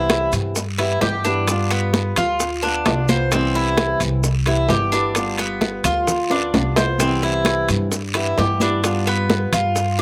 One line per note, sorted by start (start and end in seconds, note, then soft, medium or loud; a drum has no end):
0.00 0.26 C2 medium
0.00 0.55 C3 medium
0.00 0.55 E3 medium
0.00 0.56 G3 medium
0.00 0.57 B3 medium
0.00 0.32 E4 medium
0.00 0.56 E4 medium
0.10 high bongo medium
0.10 high conga medium
0.10 high timbale medium
0.10 low timbale medium
0.10 short guiro medium
0.10 maracas soft
0.32 0.98 G2 loud
0.32 high conga soft
0.32 high timbale medium
0.32 short guiro medium
0.32 maracas medium
0.55 muted nylon-string guitar stroke medium
0.55 high bongo medium
0.55 high conga soft
0.55 long guiro medium
0.55 maracas medium
0.78 1.01 E3 medium
0.78 1.02 G3 medium
0.78 1.01 B3 medium
0.78 1.01 E4 medium
0.78 high bongo soft
0.78 high conga soft
0.78 high timbale medium
0.78 maracas soft
1.01 2.11 G2 medium
1.01 1.24 E3 medium
1.01 1.25 G3 soft
1.01 1.25 B3 medium
1.01 1.24 E4 medium
1.01 1.24 G4 medium
1.01 high bongo soft
1.01 low bongo medium
1.01 high conga soft
1.01 low timbale medium
1.01 short guiro medium
1.01 maracas soft
1.24 1.48 E3 medium
1.24 1.46 G3 medium
1.24 1.47 B3 medium
1.24 1.69 D4 medium
1.24 1.47 E4 medium
1.24 high bongo soft
1.24 short guiro medium
1.24 maracas medium
1.48 2.41 G3 medium
1.48 2.42 B3 medium
1.48 2.41 F4 medium
1.48 high bongo medium
1.48 high conga soft
1.48 high timbale medium
1.48 long guiro medium
1.48 maracas medium
1.71 2.15 B3 medium
1.71 high bongo soft
1.71 high conga soft
1.71 high timbale medium
1.71 maracas soft
1.93 high bongo medium
1.93 high conga loud
1.93 low timbale medium
1.93 short guiro medium
1.93 maracas soft
2.16 2.82 D2 medium
2.16 2.62 F4 medium
2.16 high conga soft
2.16 low conga medium
2.16 high timbale loud
2.16 short guiro medium
2.16 maracas medium
2.40 muted nylon-string guitar stroke medium
2.40 high bongo medium
2.40 high conga soft
2.40 long guiro medium
2.40 maracas loud
2.63 2.87 B3 medium
2.63 3.07 D4 medium
2.63 2.85 F4 medium
2.63 high bongo soft
2.63 high conga soft
2.63 maracas soft
2.85 3.95 C2 medium
2.85 3.08 G3 soft
2.85 3.09 B3 soft
2.85 3.08 F4 medium
2.85 high bongo soft
2.85 low bongo medium
2.85 high conga medium
2.85 high timbale medium
2.85 low timbale medium
2.85 short guiro medium
2.85 maracas soft
3.09 3.32 B3 medium
3.09 3.31 F4 medium
3.09 3.31 C5 medium
3.09 high bongo soft
3.09 high conga medium
3.09 short guiro medium
3.09 maracas medium
3.32 4.22 C3 medium
3.32 4.23 E3 medium
3.32 4.24 G3 medium
3.32 4.24 B3 medium
3.32 3.54 C4 medium
3.32 4.24 E4 medium
3.32 high bongo medium
3.32 high conga soft
3.32 high timbale medium
3.32 long guiro medium
3.32 maracas medium
3.55 4.00 E4 medium
3.55 high bongo soft
3.55 high conga soft
3.55 maracas soft
3.77 high bongo medium
3.77 high conga medium
3.77 high timbale loud
3.77 low timbale medium
3.77 short guiro medium
3.77 maracas soft
4.00 4.66 C2 loud
4.00 high conga soft
4.00 high timbale medium
4.00 short guiro medium
4.00 maracas medium
4.23 muted nylon-string guitar stroke medium
4.23 high bongo medium
4.23 high conga soft
4.23 long guiro medium
4.23 maracas medium
4.46 4.68 E3 medium
4.46 4.69 G3 medium
4.46 4.69 B3 medium
4.46 4.69 E4 medium
4.46 high bongo soft
4.46 high conga soft
4.46 high timbale medium
4.46 maracas soft
4.69 5.78 G1 medium
4.69 4.92 E3 medium
4.69 4.92 G3 medium
4.69 4.92 B3 medium
4.69 4.92 E4 medium
4.69 4.92 G4 medium
4.69 high bongo soft
4.69 low bongo medium
4.69 high conga soft
4.69 low timbale medium
4.69 short guiro medium
4.69 maracas soft
4.92 5.16 E3 medium
4.92 5.13 G3 medium
4.92 5.15 B3 medium
4.92 5.37 D4 medium
4.92 5.15 E4 medium
4.92 high bongo soft
4.92 short guiro medium
4.92 maracas medium
5.15 6.08 G3 medium
5.15 6.08 B3 medium
5.15 6.08 F4 medium
5.15 high bongo medium
5.15 high conga soft
5.15 high timbale medium
5.15 long guiro medium
5.15 maracas medium
5.38 5.84 B3 medium
5.38 high bongo soft
5.38 high conga soft
5.38 high timbale medium
5.38 maracas soft
5.61 high bongo medium
5.61 high conga loud
5.61 low timbale medium
5.61 short guiro medium
5.61 maracas soft
5.84 6.49 D2 loud
5.84 6.29 F4 medium
5.84 high conga soft
5.84 low conga medium
5.84 high timbale loud
5.84 short guiro medium
5.84 maracas medium
6.07 muted nylon-string guitar stroke medium
6.07 high bongo medium
6.07 high conga soft
6.07 low conga medium
6.07 long guiro medium
6.07 maracas medium
6.30 6.53 B3 medium
6.30 6.76 D4 medium
6.30 6.53 F4 medium
6.30 high bongo soft
6.30 high conga soft
6.30 high timbale medium
6.30 maracas soft
6.53 7.62 C2 medium
6.53 6.76 G3 soft
6.53 6.76 B3 medium
6.53 6.75 F4 medium
6.53 high bongo soft
6.53 low bongo medium
6.53 high conga medium
6.53 high timbale medium
6.53 short guiro medium
6.53 maracas soft
6.76 6.99 B3 medium
6.76 6.99 F4 medium
6.76 6.99 C5 medium
6.76 high bongo soft
6.76 high conga medium
6.76 low timbale loud
6.76 short guiro medium
6.76 maracas medium
6.98 7.90 C3 medium
6.98 7.91 E3 medium
6.98 7.92 G3 medium
6.98 7.92 B3 medium
6.98 7.22 C4 medium
6.98 7.92 E4 medium
6.98 high bongo medium
6.98 high conga soft
6.98 high timbale medium
6.98 long guiro medium
6.98 maracas medium
7.22 7.68 E4 medium
7.22 high bongo soft
7.22 high conga soft
7.22 maracas soft
7.45 high bongo medium
7.45 high conga medium
7.45 high timbale medium
7.45 low timbale medium
7.45 short guiro medium
7.45 maracas soft
7.68 8.34 G2 loud
7.68 high conga soft
7.68 high timbale medium
7.68 short guiro medium
7.68 maracas medium
7.92 muted nylon-string guitar stroke medium
7.92 high bongo medium
7.92 high conga soft
7.92 long guiro medium
7.92 maracas medium
8.14 8.37 E3 medium
8.14 8.37 G3 medium
8.14 8.37 B3 medium
8.14 8.37 E4 medium
8.14 high bongo soft
8.14 high conga soft
8.14 high timbale medium
8.14 maracas soft
8.37 9.47 G2 medium
8.37 8.60 E3 medium
8.37 8.60 G3 medium
8.37 8.59 B3 medium
8.37 8.59 E4 medium
8.37 8.60 G4 medium
8.37 high bongo soft
8.37 low bongo medium
8.37 high conga soft
8.37 low timbale medium
8.37 short guiro medium
8.37 maracas soft
8.60 8.84 E3 medium
8.60 8.81 G3 medium
8.60 8.83 B3 medium
8.60 9.06 D4 medium
8.60 8.83 E4 medium
8.60 high bongo soft
8.60 high conga medium
8.60 short guiro medium
8.60 maracas medium
8.82 9.76 G3 medium
8.82 9.76 B3 medium
8.82 9.76 F4 medium
8.82 high bongo medium
8.82 high conga soft
8.82 high timbale medium
8.82 long guiro medium
8.82 maracas medium
9.07 9.52 B3 loud
9.07 high bongo soft
9.07 high conga soft
9.07 high timbale medium
9.07 maracas soft
9.30 high bongo medium
9.30 high conga medium
9.30 low timbale medium
9.30 short guiro medium
9.30 maracas soft
9.53 10.02 G2 medium
9.53 9.98 F4 medium
9.53 high conga soft
9.53 low conga medium
9.53 high timbale loud
9.53 short guiro medium
9.53 maracas medium
9.75 muted nylon-string guitar stroke medium
9.75 high bongo medium
9.75 high conga soft
9.75 long guiro medium
9.75 maracas medium
9.99 10.02 D4 medium
9.99 10.02 F4 medium
9.99 maracas soft